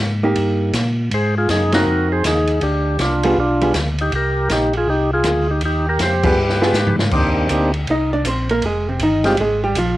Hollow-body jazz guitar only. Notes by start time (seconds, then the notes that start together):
0.23 A#3 D#4 G4
1.74 C4 D#4
3.25 G3 B3 F4 G#4
3.62 G3 B3 F4 G#4
6.23 G3 B3 F4 G#4
6.61 G3 B3 F4 G#4
7.91 D#4 D#5
8.13 D4 D5
8.27 C4 C5
8.51 A#3 A#4
8.66 G#3 G#4
8.89 C3 C4
9.03 D#3 D#4
9.26 G3 G4
9.40 G#3 G#4
9.64 G3 G4
9.78 F3 F4